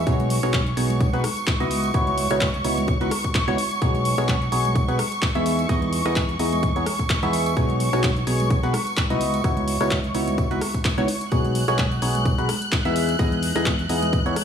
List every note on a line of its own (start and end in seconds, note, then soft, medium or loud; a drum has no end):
0.00 11.33 C#6 medium
0.06 0.41 B1 loud
0.06 0.40 B3 medium
0.06 0.40 D#4 medium
0.06 0.40 F#4 medium
0.06 0.40 G#4 medium
0.06 0.40 C#5 medium
0.06 kick loud
0.06 closed hi-hat medium
0.06 tambourine medium
0.20 closed hi-hat soft
0.20 tambourine soft
0.20 high conga loud
0.30 open hi-hat loud
0.43 0.75 B1 medium
0.43 0.61 B3 medium
0.43 0.61 D#4 medium
0.43 0.61 F#4 medium
0.43 0.61 G#4 medium
0.43 0.61 C#5 loud
0.43 cross-stick medium
0.43 closed hi-hat medium
0.43 tambourine medium
0.53 kick loud
0.53 clap loud
0.53 closed hi-hat medium
0.53 tambourine medium
0.53 high conga medium
0.67 closed hi-hat soft
0.67 tambourine soft
0.77 1.11 B1 loud
0.77 1.10 B3 medium
0.77 1.10 D#4 medium
0.77 1.10 F#4 medium
0.77 1.10 G#4 medium
0.77 1.10 C#5 medium
0.77 open hi-hat loud
0.90 closed hi-hat soft
0.90 tambourine medium
0.90 high conga loud
1.00 kick loud
1.00 closed hi-hat medium
1.00 tambourine medium
1.13 1.22 B1 loud
1.13 1.24 B3 medium
1.13 1.24 D#4 medium
1.13 1.24 F#4 medium
1.13 1.24 G#4 medium
1.13 1.24 B4 medium
1.13 closed hi-hat soft
1.13 tambourine soft
1.24 cross-stick medium
1.24 open hi-hat loud
1.24 high conga medium
1.37 closed hi-hat medium
1.37 tambourine medium
1.47 kick loud
1.47 clap loud
1.47 closed hi-hat medium
1.47 tambourine medium
1.60 1.92 C#2 medium
1.60 1.92 B3 medium
1.60 1.92 D#4 medium
1.60 1.92 E4 medium
1.60 1.92 F#4 medium
1.60 1.92 D#5 loud
1.60 closed hi-hat soft
1.60 tambourine soft
1.60 high conga medium
1.71 open hi-hat loud
1.83 tambourine medium
1.94 2.28 C#2 loud
1.94 2.28 B3 medium
1.94 2.28 D#4 medium
1.94 2.28 E4 medium
1.94 2.28 F#4 medium
1.94 2.28 C#5 medium
1.94 kick loud
1.94 closed hi-hat soft
1.94 tambourine medium
2.07 closed hi-hat soft
2.07 tambourine soft
2.07 high conga medium
2.18 open hi-hat loud
2.30 2.63 C#2 loud
2.30 2.49 B3 medium
2.30 2.49 D#4 medium
2.30 2.49 E4 medium
2.30 2.49 F#4 medium
2.30 2.49 C#5 loud
2.30 cross-stick medium
2.30 closed hi-hat medium
2.30 tambourine medium
2.41 kick loud
2.41 clap loud
2.41 closed hi-hat medium
2.41 tambourine medium
2.41 high conga medium
2.54 closed hi-hat soft
2.54 tambourine soft
2.65 2.98 C#2 loud
2.65 2.98 B3 medium
2.65 2.98 D#4 medium
2.65 2.98 E4 medium
2.65 2.98 F#4 medium
2.65 2.98 C#5 medium
2.65 open hi-hat loud
2.77 closed hi-hat soft
2.77 tambourine medium
2.77 high conga medium
2.88 kick loud
2.88 closed hi-hat soft
2.88 tambourine medium
3.00 3.09 C#2 loud
3.00 3.11 B3 medium
3.00 3.11 D#4 medium
3.00 3.11 E4 medium
3.00 3.11 F#4 medium
3.00 3.11 B4 medium
3.00 closed hi-hat soft
3.00 tambourine soft
3.11 cross-stick medium
3.11 open hi-hat loud
3.11 high conga medium
3.24 kick medium
3.24 closed hi-hat soft
3.24 tambourine medium
3.34 kick loud
3.34 clap loud
3.34 closed hi-hat soft
3.34 tambourine medium
3.48 3.56 C#2 medium
3.48 3.58 B3 medium
3.48 3.58 D#4 medium
3.48 3.58 E4 medium
3.48 3.58 F#4 medium
3.48 3.58 C#5 loud
3.48 closed hi-hat soft
3.48 tambourine soft
3.48 high conga medium
3.58 open hi-hat loud
3.71 closed hi-hat medium
3.71 tambourine medium
3.82 4.16 B1 medium
3.82 4.15 B3 medium
3.82 4.15 D#4 medium
3.82 4.15 F#4 medium
3.82 4.15 G#4 medium
3.82 4.15 C#5 medium
3.82 kick loud
3.82 closed hi-hat medium
3.82 tambourine medium
3.94 closed hi-hat soft
3.94 tambourine soft
3.94 high conga medium
4.05 open hi-hat loud
4.18 4.50 B1 medium
4.18 4.36 B3 loud
4.18 4.36 D#4 medium
4.18 4.36 F#4 medium
4.18 4.36 G#4 medium
4.18 4.36 C#5 loud
4.18 cross-stick medium
4.18 closed hi-hat medium
4.18 tambourine medium
4.29 kick loud
4.29 clap loud
4.29 closed hi-hat medium
4.29 tambourine medium
4.29 high conga medium
4.42 closed hi-hat soft
4.42 tambourine soft
4.52 4.86 B1 loud
4.52 4.85 B3 medium
4.52 4.85 D#4 medium
4.52 4.85 F#4 medium
4.52 4.85 G#4 medium
4.52 4.85 C#5 medium
4.52 open hi-hat loud
4.65 tambourine medium
4.65 high conga medium
4.76 kick loud
4.76 closed hi-hat medium
4.76 tambourine medium
4.88 4.97 B1 medium
4.88 4.99 B3 medium
4.88 4.99 D#4 medium
4.88 4.99 F#4 medium
4.88 4.99 G#4 medium
4.88 4.99 B4 medium
4.88 closed hi-hat soft
4.88 tambourine soft
4.99 cross-stick medium
4.99 open hi-hat loud
4.99 high conga medium
5.12 closed hi-hat medium
5.12 tambourine medium
5.22 kick loud
5.22 clap loud
5.22 closed hi-hat medium
5.22 tambourine medium
5.35 5.67 E2 loud
5.35 5.67 B3 medium
5.35 5.67 D#4 medium
5.35 5.67 E4 medium
5.35 5.67 G#4 medium
5.35 5.67 E5 loud
5.35 closed hi-hat soft
5.35 tambourine soft
5.35 high conga medium
5.46 open hi-hat loud
5.59 closed hi-hat medium
5.59 tambourine medium
5.69 6.03 E2 medium
5.69 6.03 B3 medium
5.69 6.03 D#4 medium
5.69 6.03 E4 medium
5.69 6.03 G#4 medium
5.69 6.03 D#5 medium
5.69 kick loud
5.69 closed hi-hat medium
5.69 tambourine medium
5.82 closed hi-hat soft
5.82 tambourine soft
5.82 high conga medium
5.93 open hi-hat loud
6.06 6.37 E2 medium
6.06 6.24 B3 loud
6.06 6.24 D#4 medium
6.06 6.24 E4 medium
6.06 6.24 G#4 medium
6.06 6.24 D#5 loud
6.06 cross-stick medium
6.06 closed hi-hat medium
6.06 tambourine medium
6.16 kick loud
6.16 clap loud
6.16 closed hi-hat medium
6.16 tambourine medium
6.16 high conga medium
6.28 closed hi-hat soft
6.28 tambourine soft
6.39 6.73 E2 loud
6.39 6.73 B3 medium
6.39 6.73 D#4 medium
6.39 6.73 E4 medium
6.39 6.73 G#4 medium
6.39 6.73 D#5 medium
6.39 open hi-hat loud
6.52 closed hi-hat medium
6.52 tambourine medium
6.52 high conga medium
6.63 kick loud
6.63 closed hi-hat medium
6.63 tambourine medium
6.76 6.84 E2 loud
6.76 6.86 B3 medium
6.76 6.86 D#4 medium
6.76 6.86 E4 medium
6.76 6.86 G#4 medium
6.76 6.86 C#5 medium
6.76 closed hi-hat soft
6.76 tambourine soft
6.86 cross-stick medium
6.86 open hi-hat loud
6.86 high conga medium
6.99 kick medium
6.99 tambourine medium
7.10 kick loud
7.10 clap loud
7.10 closed hi-hat medium
7.10 tambourine medium
7.22 7.55 E2 loud
7.22 7.54 B3 medium
7.22 7.54 D#4 medium
7.22 7.54 E4 medium
7.22 7.54 G#4 medium
7.22 7.54 E5 loud
7.22 closed hi-hat soft
7.22 tambourine soft
7.22 high conga medium
7.33 open hi-hat loud
7.46 closed hi-hat medium
7.46 tambourine medium
7.57 7.91 B1 loud
7.57 7.90 B3 medium
7.57 7.90 D#4 medium
7.57 7.90 F#4 medium
7.57 7.90 G#4 medium
7.57 7.90 C#5 medium
7.57 kick loud
7.57 closed hi-hat medium
7.57 tambourine medium
7.69 closed hi-hat soft
7.69 tambourine soft
7.69 high conga medium
7.80 open hi-hat loud
7.93 8.25 B1 medium
7.93 8.11 B3 medium
7.93 8.11 D#4 medium
7.93 8.11 F#4 medium
7.93 8.11 G#4 medium
7.93 8.11 C#5 loud
7.93 cross-stick medium
7.93 closed hi-hat medium
7.93 tambourine medium
8.03 kick loud
8.03 clap loud
8.03 closed hi-hat medium
8.03 tambourine medium
8.03 high conga medium
8.16 closed hi-hat soft
8.16 tambourine soft
8.27 8.61 B1 loud
8.27 8.60 B3 medium
8.27 8.60 D#4 medium
8.27 8.60 F#4 medium
8.27 8.60 G#4 medium
8.27 8.60 C#5 medium
8.27 open hi-hat loud
8.40 closed hi-hat medium
8.40 tambourine medium
8.40 high conga medium
8.50 kick loud
8.50 closed hi-hat medium
8.50 tambourine medium
8.63 8.72 B1 loud
8.63 8.74 B3 medium
8.63 8.74 D#4 medium
8.63 8.74 F#4 medium
8.63 8.74 G#4 medium
8.63 8.74 B4 medium
8.63 closed hi-hat soft
8.63 tambourine soft
8.73 cross-stick medium
8.73 open hi-hat loud
8.73 high conga medium
8.87 closed hi-hat medium
8.87 tambourine medium
8.97 kick loud
8.97 clap loud
8.97 closed hi-hat medium
8.97 tambourine medium
9.10 9.42 C#2 medium
9.10 9.42 B3 medium
9.10 9.42 D#4 medium
9.10 9.42 E4 medium
9.10 9.42 F#4 medium
9.10 9.42 D#5 loud
9.10 closed hi-hat soft
9.10 tambourine soft
9.10 high conga medium
9.21 open hi-hat loud
9.34 closed hi-hat medium
9.34 tambourine medium
9.44 9.78 C#2 loud
9.44 9.78 B3 medium
9.44 9.78 D#4 medium
9.44 9.78 E4 medium
9.44 9.78 F#4 medium
9.44 9.78 C#5 medium
9.44 kick loud
9.44 closed hi-hat medium
9.44 tambourine medium
9.57 closed hi-hat soft
9.57 tambourine soft
9.57 high conga loud
9.68 open hi-hat loud
9.81 10.12 C#2 loud
9.81 9.99 B3 loud
9.81 9.99 D#4 medium
9.81 9.99 E4 medium
9.81 9.99 F#4 medium
9.81 9.99 C#5 loud
9.81 cross-stick medium
9.81 closed hi-hat medium
9.81 tambourine medium
9.91 kick loud
9.91 clap loud
9.91 closed hi-hat medium
9.91 tambourine medium
9.91 high conga medium
10.03 closed hi-hat soft
10.03 tambourine soft
10.15 10.48 C#2 loud
10.15 10.48 B3 medium
10.15 10.48 D#4 medium
10.15 10.48 E4 medium
10.15 10.48 F#4 medium
10.15 10.48 C#5 medium
10.15 open hi-hat loud
10.28 closed hi-hat medium
10.28 tambourine medium
10.28 high conga loud
10.38 kick loud
10.38 closed hi-hat medium
10.38 tambourine medium
10.51 10.59 C#2 loud
10.51 10.61 B3 medium
10.51 10.61 D#4 medium
10.51 10.61 E4 medium
10.51 10.61 F#4 medium
10.51 10.61 B4 medium
10.51 closed hi-hat soft
10.51 tambourine soft
10.61 cross-stick medium
10.61 open hi-hat loud
10.61 high conga medium
10.74 kick medium
10.74 closed hi-hat medium
10.74 tambourine medium
10.85 kick loud
10.85 clap loud
10.85 closed hi-hat medium
10.85 tambourine medium
10.98 11.06 C#2 medium
10.98 11.08 B3 loud
10.98 11.08 D#4 medium
10.98 11.08 E4 medium
10.98 11.08 F#4 medium
10.98 11.08 C#5 loud
10.98 closed hi-hat soft
10.98 tambourine soft
10.98 high conga medium
11.08 open hi-hat loud
11.21 closed hi-hat medium
11.21 tambourine medium
11.32 11.66 B1 loud
11.32 11.65 B3 medium
11.32 11.65 D#4 medium
11.32 11.65 F#4 medium
11.32 11.65 G#4 medium
11.32 11.65 C#5 medium
11.32 14.44 F#6 medium
11.32 kick loud
11.32 closed hi-hat medium
11.32 tambourine medium
11.45 closed hi-hat soft
11.45 tambourine soft
11.45 high conga medium
11.55 open hi-hat loud
11.68 12.00 B1 loud
11.68 11.86 B3 loud
11.68 11.86 D#4 medium
11.68 11.86 F#4 medium
11.68 11.86 G#4 medium
11.68 11.86 C#5 loud
11.68 cross-stick medium
11.68 closed hi-hat medium
11.68 tambourine medium
11.78 kick loud
11.78 clap loud
11.78 closed hi-hat medium
11.78 tambourine medium
11.78 high conga medium
11.92 closed hi-hat soft
11.92 tambourine soft
12.02 12.36 B1 loud
12.02 12.35 B3 medium
12.02 12.35 D#4 medium
12.02 12.35 F#4 medium
12.02 12.35 G#4 medium
12.02 12.35 C#5 medium
12.02 open hi-hat loud
12.15 closed hi-hat medium
12.15 tambourine medium
12.15 high conga medium
12.26 kick loud
12.26 closed hi-hat medium
12.26 tambourine medium
12.38 12.47 B1 loud
12.38 12.49 B3 medium
12.38 12.49 D#4 medium
12.38 12.49 F#4 medium
12.38 12.49 G#4 medium
12.38 12.49 B4 medium
12.38 closed hi-hat soft
12.38 tambourine soft
12.49 cross-stick medium
12.49 open hi-hat loud
12.49 high conga medium
12.62 closed hi-hat medium
12.62 tambourine medium
12.72 kick loud
12.72 clap loud
12.72 closed hi-hat medium
12.72 tambourine medium
12.85 13.17 E2 loud
12.85 13.17 B3 medium
12.85 13.17 D#4 medium
12.85 13.17 E4 medium
12.85 13.17 G#4 medium
12.85 13.17 E5 loud
12.85 closed hi-hat soft
12.85 tambourine soft
12.85 high conga medium
12.96 open hi-hat loud
13.09 closed hi-hat medium
13.09 tambourine medium
13.19 13.53 E2 medium
13.19 13.53 B3 medium
13.19 13.53 D#4 medium
13.19 13.53 E4 medium
13.19 13.53 G#4 medium
13.19 13.53 D#5 medium
13.19 kick loud
13.19 closed hi-hat medium
13.19 tambourine medium
13.32 closed hi-hat soft
13.32 tambourine soft
13.32 high conga loud
13.43 open hi-hat loud
13.56 13.88 E2 loud
13.56 13.74 B3 loud
13.56 13.74 D#4 medium
13.56 13.74 E4 medium
13.56 13.74 G#4 medium
13.56 13.74 D#5 loud
13.56 cross-stick medium
13.56 closed hi-hat medium
13.56 tambourine medium
13.66 kick loud
13.66 clap loud
13.66 closed hi-hat medium
13.66 tambourine medium
13.66 high conga medium
13.79 closed hi-hat soft
13.79 tambourine soft
13.89 14.23 E2 loud
13.89 14.23 B3 medium
13.89 14.23 D#4 medium
13.89 14.23 E4 medium
13.89 14.23 G#4 medium
13.89 14.23 D#5 medium
13.89 open hi-hat loud
14.02 closed hi-hat medium
14.02 tambourine medium
14.02 high conga loud
14.13 kick loud
14.13 closed hi-hat medium
14.13 tambourine medium
14.26 14.34 E2 medium
14.26 14.36 B3 medium
14.26 14.36 D#4 medium
14.26 14.36 E4 medium
14.26 14.36 G#4 medium
14.26 14.36 C#5 medium
14.26 closed hi-hat soft
14.26 tambourine soft
14.36 cross-stick medium
14.36 open hi-hat loud
14.36 high conga medium